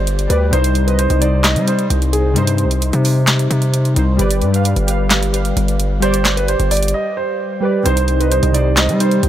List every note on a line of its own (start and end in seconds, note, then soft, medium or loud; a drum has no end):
0.00 0.28 G1 loud
0.00 0.28 G3 medium
0.00 0.29 G4 medium
0.00 0.31 B4 medium
0.00 0.27 C5 medium
0.00 0.32 D5 loud
0.00 0.55 F5 medium
0.07 closed hi-hat medium
0.19 closed hi-hat medium
0.28 0.52 D2 loud
0.28 0.47 G3 medium
0.28 0.48 G4 medium
0.28 0.50 B4 medium
0.28 0.49 B4 medium
0.28 closed hi-hat medium
0.32 0.49 D5 medium
0.51 1.08 C2 loud
0.51 0.79 C3 loud
0.51 0.80 G3 medium
0.51 0.81 D#4 medium
0.51 0.85 C5 loud
0.51 closed hi-hat medium
0.55 0.81 C5 loud
0.64 closed hi-hat medium
0.75 closed hi-hat medium
0.85 1.14 C3 medium
0.85 1.14 G3 medium
0.85 1.15 D#4 medium
0.85 0.98 B4 medium
0.85 closed hi-hat medium
0.90 1.16 D#5 medium
0.99 1.19 C5 medium
0.99 closed hi-hat medium
1.10 1.57 C2 loud
1.10 closed hi-hat medium
1.19 1.57 C3 medium
1.19 1.58 G3 medium
1.19 1.59 D#4 medium
1.19 1.42 D5 medium
1.19 closed hi-hat medium
1.24 1.59 C5 medium
1.44 1.65 D#5 medium
1.44 snare loud
1.44 clap loud
1.44 closed hi-hat medium
1.56 1.88 G3 loud
1.56 closed hi-hat medium
1.65 2.21 C3 medium
1.65 2.22 G3 medium
1.65 2.22 D#4 medium
1.65 2.10 C5 medium
1.65 closed hi-hat medium
1.69 2.23 C5 medium
1.79 closed hi-hat medium
1.90 2.37 C2 loud
1.90 closed hi-hat medium
2.02 closed hi-hat soft
2.13 2.34 G#4 medium
2.13 closed hi-hat medium
2.33 2.66 G2 loud
2.33 3.08 C3 loud
2.33 3.09 G3 medium
2.33 3.09 D#4 medium
2.33 closed hi-hat medium
2.38 3.10 C5 loud
2.47 closed hi-hat medium
2.58 closed hi-hat medium
2.65 2.92 C2 loud
2.71 closed hi-hat medium
2.82 closed hi-hat medium
2.93 3.48 C3 loud
2.93 closed hi-hat medium
3.05 open hi-hat medium
3.27 snare loud
3.27 clap medium
3.27 closed hi-hat medium
3.39 closed hi-hat medium
3.50 3.94 C3 loud
3.50 closed hi-hat medium
3.62 closed hi-hat medium
3.74 closed hi-hat medium
3.85 closed hi-hat soft
3.94 4.18 C2 loud
3.94 4.13 C3 medium
3.94 4.14 G3 medium
3.94 4.15 D#4 medium
3.94 closed hi-hat medium
3.99 4.16 C5 medium
4.17 4.44 G1 loud
4.17 4.45 G3 loud
4.17 4.46 G4 medium
4.17 4.47 B4 medium
4.17 closed hi-hat medium
4.21 4.48 D5 loud
4.31 closed hi-hat medium
4.42 4.75 G2 loud
4.42 closed hi-hat medium
4.51 4.80 G3 medium
4.51 4.81 G4 medium
4.51 4.81 B4 medium
4.51 closed hi-hat medium
4.56 4.82 F5 medium
4.65 closed hi-hat medium
4.76 5.53 G1 loud
4.76 closed hi-hat medium
4.86 5.23 G3 medium
4.86 5.24 G4 medium
4.86 5.25 B4 medium
4.86 closed hi-hat medium
4.90 5.26 F5 medium
5.10 snare loud
5.10 clap medium
5.10 closed hi-hat medium
5.23 closed hi-hat medium
5.31 5.87 G3 medium
5.31 5.88 G4 medium
5.31 5.89 B4 medium
5.31 closed hi-hat medium
5.36 5.90 F5 medium
5.45 closed hi-hat medium
5.57 6.56 G1 loud
5.57 closed hi-hat medium
5.68 closed hi-hat soft
5.80 closed hi-hat medium
6.00 6.75 G3 loud
6.00 6.75 G4 medium
6.00 6.35 C5 loud
6.00 closed hi-hat medium
6.05 6.77 D5 loud
6.14 closed hi-hat medium
6.25 snare medium
6.25 clap medium
6.25 closed hi-hat medium
6.37 6.47 B4 medium
6.37 closed hi-hat medium
6.48 6.69 C5 medium
6.48 closed hi-hat medium
6.60 6.94 G1 loud
6.60 closed hi-hat medium
6.71 6.92 D5 medium
6.71 closed hi-hat medium
6.71 open hi-hat medium
6.77 closed hi-hat medium
6.83 closed hi-hat medium
6.88 closed hi-hat medium
6.94 7.15 D#5 medium
7.17 7.60 C5 medium
7.61 7.80 G3 medium
7.61 7.81 G4 medium
7.61 7.83 B4 medium
7.61 7.81 B4 medium
7.65 7.82 D5 medium
7.83 8.41 C2 loud
7.83 8.12 C3 loud
7.83 9.29 D#3 medium
7.83 8.13 G3 medium
7.83 9.29 G3 medium
7.83 9.29 C4 medium
7.83 8.13 D#4 medium
7.83 9.29 G4 medium
7.83 8.18 C5 loud
7.83 closed hi-hat medium
7.88 8.14 C5 loud
7.97 closed hi-hat medium
8.08 closed hi-hat medium
8.18 8.46 C3 medium
8.18 8.47 G3 medium
8.18 8.48 D#4 medium
8.18 8.30 B4 medium
8.18 closed hi-hat medium
8.23 8.49 D#5 medium
8.31 8.52 C5 medium
8.31 closed hi-hat medium
8.43 8.90 C2 loud
8.43 closed hi-hat medium
8.52 8.90 C3 medium
8.52 8.91 G3 medium
8.52 8.91 D#4 medium
8.52 8.75 D5 medium
8.52 closed hi-hat medium
8.57 8.92 C5 medium
8.77 8.98 D#5 medium
8.77 snare loud
8.77 clap loud
8.77 closed hi-hat medium
8.89 9.21 G3 loud
8.89 closed hi-hat medium
8.98 9.29 C3 medium
8.98 9.29 G3 medium
8.98 9.29 D#4 medium
8.98 9.29 C5 medium
8.98 closed hi-hat medium
9.02 9.29 C5 medium
9.11 closed hi-hat medium
9.23 9.29 C2 loud
9.23 closed hi-hat medium